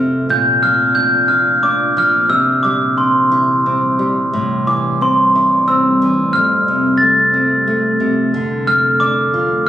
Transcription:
Already playing: nylon-string guitar F2 C3 A3 C4, ambient pad F2 C3 A3
0.28 ambient pad A#2 F3 D4, nylon-string guitar A#2, glockenspiel G6
0.63 nylon-string guitar F3, glockenspiel F6
0.95 nylon-string guitar D4, glockenspiel G6
1.28 nylon-string guitar F4, glockenspiel F6
1.63 nylon-string guitar D4, glockenspiel D6
1.97 nylon-string guitar F3, glockenspiel F6
2.29 ambient pad C3 G3 E4, nylon-string guitar C3, glockenspiel E6
2.63 nylon-string guitar G3, glockenspiel D6
2.98 nylon-string guitar C4, glockenspiel C6
3.32 nylon-string guitar E4
3.66 nylon-string guitar C4
3.99 nylon-string guitar G3
4.33 ambient pad A2 C4, nylon-string guitar A2
4.67 nylon-string guitar E3, glockenspiel D6
5.01 nylon-string guitar C4, glockenspiel C6
5.35 nylon-string guitar E4
5.68 nylon-string guitar C4, glockenspiel E6
6.02 nylon-string guitar E3
6.32 ambient pad F2 C3 A3, nylon-string guitar F2, glockenspiel F6
6.68 nylon-string guitar C3
6.98 nylon-string guitar A3, glockenspiel A6
7.34 nylon-string guitar C4
7.67 nylon-string guitar A3
8.00 nylon-string guitar C3
8.32 ambient pad D2 A2 F3, nylon-string guitar D3
8.67 nylon-string guitar A3, glockenspiel F6
9.00 nylon-string guitar D4, glockenspiel D6
9.34 nylon-string guitar F4

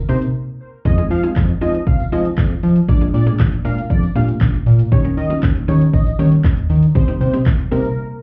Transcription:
0.09 analog synth bass C3, synth pluck A#3 C4 D#4 G4 A#4, analog synth lead C5, open hi-hat, tambourine, shaker
0.22 closed hi-hat, tambourine, shaker
0.85 analog synth bass F2, synth pluck G#3 C4 D#4 F4 G#4, analog synth lead D#5, kick, tambourine, shaker
0.98 synth pluck G#3 C4 D#4 F4 G#4, closed hi-hat, shaker
1.10 analog synth bass F3, analog synth lead F5, open hi-hat, shaker
1.23 synth pluck G#3 C4 D#4 F4 G#4, closed hi-hat, tambourine, shaker
1.36 analog synth bass F2, kick, clap, tambourine, shaker
1.49 closed hi-hat, shaker
1.61 analog synth bass F3, synth pluck G#3 C4 D#4 F4 G#4, analog synth lead D#5, open hi-hat, tambourine, shaker
1.75 closed hi-hat, shaker
1.87 analog synth bass C2, analog synth lead F5, kick, tambourine, shaker
2.00 closed hi-hat, tambourine, shaker
2.12 analog synth bass F3, synth pluck G#3 C4 D#4 F4 G#4, analog synth lead D#5, open hi-hat, tambourine, shaker
2.25 closed hi-hat, tambourine, shaker
2.38 analog synth bass F2, kick, clap, tambourine, shaker
2.51 closed hi-hat, shaker
2.63 analog synth bass F3, open hi-hat, tambourine, shaker
2.76 closed hi-hat, shaker
2.88 analog synth bass A#1, synth pluck G#3 A#3 D4 F4 G#4, analog synth lead D5, kick, tambourine, shaker
3.01 synth pluck G#3 A#3 D4 F4 G#4, closed hi-hat, shaker
3.14 analog synth bass A#2, analog synth lead D5, open hi-hat, shaker
3.26 synth pluck G#3 A#3 D4 F4 G#4, closed hi-hat, shaker
3.39 analog synth bass A#1, kick, clap, tambourine, shaker
3.52 closed hi-hat, shaker
3.65 analog synth bass A#2, synth pluck G#3 A#3 D4 F4 A#4, analog synth lead F5, open hi-hat, tambourine, shaker
3.78 closed hi-hat, tambourine, shaker
3.90 analog synth bass F2, analog synth lead D5, kick, tambourine, shaker
4.03 closed hi-hat, tambourine, shaker
4.15 analog synth bass A#2, synth pluck G#3 A#3 D4 F4 G4, analog synth lead F5, open hi-hat, tambourine, shaker
4.28 closed hi-hat, tambourine, shaker
4.41 analog synth bass A#1, kick, clap, tambourine, shaker
4.54 closed hi-hat, shaker
4.66 analog synth bass A#2, open hi-hat, tambourine, shaker
4.79 closed hi-hat, tambourine, shaker
4.92 analog synth bass D#2, synth pluck G3 A#3 C#4 D#4 G4, analog synth lead C#5, kick, tambourine, shaker
5.04 synth pluck G3 A#3 C#4 D#4 A#4, closed hi-hat, shaker
5.17 analog synth bass D#3, analog synth lead D#5, open hi-hat, shaker
5.30 synth pluck G3 A#3 C#4 D#4 F4, closed hi-hat, tambourine, shaker
5.43 analog synth bass D#2, kick, clap, tambourine, shaker
5.56 closed hi-hat, shaker
5.68 analog synth bass D#3, synth pluck G3 A#3 C#4 D#4 G4, analog synth lead C#5, open hi-hat, tambourine, shaker
5.81 closed hi-hat, tambourine, shaker
5.93 analog synth bass A#1, analog synth lead D#5, kick, tambourine, shaker
6.06 closed hi-hat, tambourine, shaker
6.19 analog synth bass D#3, synth pluck G3 A#3 C#4 D#4 G4, analog synth lead C#5, open hi-hat, tambourine, shaker
6.32 closed hi-hat, shaker
6.44 analog synth bass D#2, kick, clap, tambourine, shaker
6.57 closed hi-hat, shaker
6.70 analog synth bass D#3, open hi-hat, tambourine, shaker
6.83 closed hi-hat, tambourine, shaker
6.95 analog synth bass C2, synth pluck G3 A#3 C4 D#4 G4, analog synth lead C5, kick, tambourine, shaker
7.08 synth pluck G3 A#3 C4 D#4 G4, closed hi-hat, shaker
7.21 analog synth bass C3, analog synth lead C5, open hi-hat, shaker
7.33 synth pluck G3 A#3 C4 D#4 G4, closed hi-hat, tambourine, shaker
7.46 analog synth bass C2, kick, clap, tambourine, shaker
7.59 closed hi-hat, shaker
7.71 analog synth bass C3, synth pluck G3 A#3 C4 D#4 A#4, analog synth lead A#4, open hi-hat, tambourine, shaker
7.84 closed hi-hat, tambourine, shaker

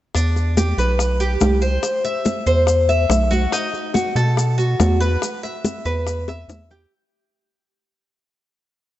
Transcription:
0.15 analog synth bass E2, cuban tres D4, high bongo, high conga, maracas
0.36 high bongo, high conga, maracas
0.57 cuban tres G4, high bongo, high conga, maracas
0.78 analog synth bass B1, cuban tres B4, high bongo, high conga, maracas
0.99 high bongo, high conga, maracas
1.20 cuban tres G4, high conga, maracas
1.41 analog synth bass C2, high bongo, low bongo, high conga, maracas
1.61 cuban tres C5, high bongo, maracas
1.83 high bongo, high conga, maracas
2.04 cuban tres E5, high bongo, high conga, maracas
2.25 high bongo, high conga, maracas
2.46 analog synth bass E2, cuban tres C5, high bongo, maracas
2.67 high bongo, high conga, maracas
2.89 cuban tres E5, high conga, maracas
3.10 analog synth bass B1, high bongo, low bongo, high conga, maracas
3.31 cuban tres F#4, high bongo, high conga, maracas
3.52 cuban tres D#4, high bongo, high conga, maracas
3.74 high bongo, high conga, maracas
3.94 cuban tres F#4, high bongo, high conga, maracas
4.15 analog synth bass B2, cuban tres A4, high bongo, high conga, maracas
4.37 high bongo, high conga, maracas
4.58 cuban tres F#4, high conga, maracas
4.80 analog synth bass E2, high bongo, low bongo, high conga, maracas
5.00 cuban tres B4, high bongo, maracas
5.22 high bongo, high conga, maracas
5.43 cuban tres E5, high bongo, high conga, maracas
5.65 high bongo, high conga, maracas
5.85 analog synth bass E2, cuban tres B4, high bongo, maracas
6.07 high bongo, high conga, maracas
6.28 cuban tres E5, high bongo, high conga, maracas
6.48 analog synth bass E2, low bongo, high conga, maracas
6.71 cuban tres G4, low bongo, maracas

